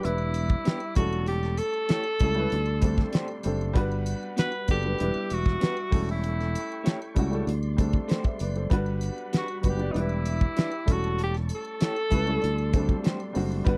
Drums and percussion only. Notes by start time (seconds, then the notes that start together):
0.03 closed hi-hat, muted triangle
0.18 muted triangle
0.34 closed hi-hat, triangle
0.49 kick, muted triangle
0.65 snare, closed hi-hat, muted triangle
0.80 muted triangle
0.95 kick, closed hi-hat, triangle
1.13 muted triangle
1.26 closed hi-hat, muted triangle
1.43 snare, muted triangle
1.58 closed hi-hat, triangle
1.74 muted triangle
1.89 snare, closed hi-hat, muted triangle
2.04 muted triangle
2.19 kick, closed hi-hat, triangle
2.35 muted triangle
2.50 closed hi-hat, muted triangle
2.66 muted triangle
2.82 kick, closed hi-hat, triangle
2.98 kick, snare, muted triangle
3.13 snare, closed hi-hat, muted triangle
3.28 muted triangle
3.43 closed hi-hat, triangle
3.61 muted triangle
3.75 kick, closed hi-hat, muted triangle
3.92 muted triangle
4.06 closed hi-hat, triangle
4.23 muted triangle
4.37 snare, closed hi-hat, muted triangle
4.52 muted triangle
4.68 kick, closed hi-hat, triangle
4.83 muted triangle
4.99 closed hi-hat, muted triangle
5.14 muted triangle
5.30 closed hi-hat, triangle
5.46 kick, snare, muted triangle
5.61 snare, closed hi-hat, muted triangle
5.77 muted triangle
5.92 kick, open hi-hat, triangle
6.09 muted triangle
6.24 closed hi-hat, muted triangle
6.40 snare, muted triangle
6.55 closed hi-hat, triangle
6.72 muted triangle
6.86 snare, closed hi-hat, muted triangle
7.02 muted triangle
7.16 kick, closed hi-hat, triangle
7.33 muted triangle
7.47 closed hi-hat, muted triangle
7.63 muted triangle
7.78 kick, closed hi-hat, triangle
7.93 kick, muted triangle
8.09 snare, closed hi-hat, muted triangle
8.24 kick, muted triangle
8.39 closed hi-hat, triangle
8.56 muted triangle
8.70 kick, closed hi-hat, muted triangle
8.86 muted triangle
9.01 closed hi-hat, triangle
9.18 muted triangle
9.33 snare, closed hi-hat, muted triangle
9.48 muted triangle
9.63 kick, closed hi-hat, triangle
9.79 muted triangle
9.94 closed hi-hat, muted triangle
10.09 muted triangle
10.25 closed hi-hat, triangle
10.41 kick, muted triangle
10.57 snare, closed hi-hat, muted triangle
10.72 muted triangle
10.88 kick, closed hi-hat, triangle
11.04 muted triangle
11.19 closed hi-hat, muted triangle
11.35 snare, muted triangle
11.49 closed hi-hat, triangle
11.65 muted triangle
11.80 snare, closed hi-hat, muted triangle
11.96 muted triangle
12.11 kick, closed hi-hat, triangle
12.27 muted triangle
12.42 closed hi-hat, muted triangle
12.58 muted triangle
12.73 kick, closed hi-hat, triangle
12.89 kick, muted triangle
13.04 snare, closed hi-hat, muted triangle
13.20 muted triangle
13.35 open hi-hat, triangle
13.52 muted triangle
13.65 kick, closed hi-hat, muted triangle